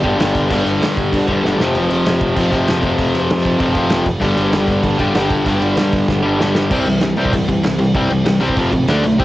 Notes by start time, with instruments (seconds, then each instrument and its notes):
Already playing: distorted electric guitar G2 D3 G3 B3 D4
0.03 picked electric bass G1, overdriven electric guitar G2 D3 G3, kick, crash
0.17 picked electric bass G1, overdriven electric guitar G2 D3 G3, crash
0.21 snare
0.35 picked electric bass G1, kick, crash
0.49 picked electric bass G1, overdriven electric guitar G2 D3 G3, distorted electric guitar G2 D3 G3 B3, kick, crash
0.53 distorted electric guitar D4
0.65 picked electric bass G1, crash
0.81 picked electric bass G2, snare, crash
0.97 kick, crash
1.12 picked electric bass G1, distorted electric guitar G2 D3 G3 B3 D4, kick, crash
1.27 overdriven electric guitar G2 D3 G3, kick, crash
1.43 picked electric bass G1, overdriven electric guitar G2 D3 G3, snare
1.58 picked electric bass F1, distorted electric guitar F2 C3 F3 A3, overdriven electric guitar F2 C3 F3, snare
1.62 distorted electric guitar C4
1.74 picked electric bass F1, crash
1.90 picked electric bass F1, crash
2.05 picked electric bass F1, snare, crash
2.20 picked electric bass F1, distorted electric guitar C3 F3 A3 C4, kick, crash
2.25 distorted electric guitar F2
2.36 picked electric bass F1, overdriven electric guitar F2 C3 F3, kick, crash
2.51 picked electric bass F1, overdriven electric guitar C3 F3, kick, crash
2.55 overdriven electric guitar F2
2.68 picked electric bass F1, snare, crash
2.82 picked electric bass F1, overdriven electric guitar F2 C3 F3, distorted electric guitar F2 C3, kick, crash
2.86 distorted electric guitar F3 A3 C4
2.98 picked electric bass F1, kick, crash
3.15 picked electric bass F1, crash
3.30 picked electric bass F2, snare, crash
3.45 distorted electric guitar C3 F3 A3 C4, kick, crash
3.50 distorted electric guitar F2
3.58 picked electric bass F1, overdriven electric guitar F2 C3 F3, kick, crash
3.73 overdriven electric guitar C3 F3, kick, crash
3.77 overdriven electric guitar F2
3.90 picked electric bass F1, snare, crash
4.06 kick, crash
4.20 picked electric bass G1, overdriven electric guitar G2 D3 G3, distorted electric guitar G2 D3, kick, crash
4.24 distorted electric guitar G3 B3 D4
4.37 picked electric bass G1, crash
4.52 picked electric bass G1, snare, crash
4.68 picked electric bass G1, kick, crash
4.83 picked electric bass G1, distorted electric guitar G2 D3 G3 B3, kick, crash
4.87 distorted electric guitar D4
4.98 picked electric bass G1, overdriven electric guitar D3 G3, kick, crash
5.02 overdriven electric guitar G2
5.15 picked electric bass G1, overdriven electric guitar G2 D3 G3, snare, crash
5.30 picked electric bass G1, kick, crash
5.46 picked electric bass G1, overdriven electric guitar G2 D3, distorted electric guitar G2 D3 G3 B3 D4, kick, crash
5.50 overdriven electric guitar G3
5.62 picked electric bass G1, crash
5.77 picked electric bass G2, snare, crash
5.93 kick, crash
6.08 picked electric bass G1, distorted electric guitar G2 D3 G3 B3 D4, kick, snare
6.22 overdriven electric guitar D3 G3
6.27 overdriven electric guitar G2
6.39 picked electric bass G1, overdriven electric guitar G2 D3 G3, snare
6.55 snare
6.70 picked electric bass C2, distorted electric guitar C3 E3 G3, overdriven electric guitar C3 G3 C4, kick, crash
6.86 picked electric bass C2, overdriven electric guitar C3 G3, distorted electric guitar C3 E3, crash
7.01 picked electric bass C2, distorted electric guitar C3 E3, overdriven electric guitar C3 G3, snare, crash
7.17 picked electric bass C2, overdriven electric guitar C3 G3 C4, distorted electric guitar C3 E3 G3, crash
7.25 kick
7.33 picked electric bass C2, overdriven electric guitar C3 G3, distorted electric guitar C3 E3, kick, crash
7.48 picked electric bass C2, overdriven electric guitar C3 G3, distorted electric guitar C3 E3, kick, crash
7.63 picked electric bass C2, distorted electric guitar C3 E3, overdriven electric guitar C3 G3, snare, crash
7.79 overdriven electric guitar C3 G3, distorted electric guitar C3 E3, crash
7.95 picked electric bass C2, distorted electric guitar C3 E3 G3, overdriven electric guitar C3 G3 C4, kick, crash
8.10 picked electric bass C2, distorted electric guitar C3 E3, overdriven electric guitar C3 G3, crash
8.25 picked electric bass C2, distorted electric guitar C3 E3, overdriven electric guitar C3 G3, snare, crash
8.40 picked electric bass C2, overdriven electric guitar C3 G3 C4, distorted electric guitar C3 E3 G3, crash
8.49 kick
8.56 picked electric bass F1, overdriven electric guitar F2 C3 F3, distorted electric guitar F3 C4 F4, kick, crash
8.72 picked electric bass A1, overdriven electric guitar F2 C3, distorted electric guitar F3 C4, kick, crash
8.87 picked electric bass D2, distorted electric guitar D3 A3 D4, overdriven electric guitar D3 A3 D4, snare, crash
9.03 picked electric bass B1, distorted electric guitar D3 A3, overdriven electric guitar D3 A3, crash
9.19 picked electric bass C2, overdriven electric guitar C3 G3 C4, distorted electric guitar C3 G3 C4, kick, crash